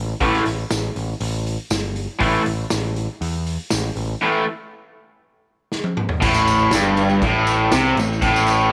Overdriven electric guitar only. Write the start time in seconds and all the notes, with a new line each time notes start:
0.21 A2 E3 A3
2.20 A2 E3 A3
4.21 A2 E3 A3
6.22 A2
6.72 G2
7.24 A2
7.73 C3
7.99 A2
8.22 A2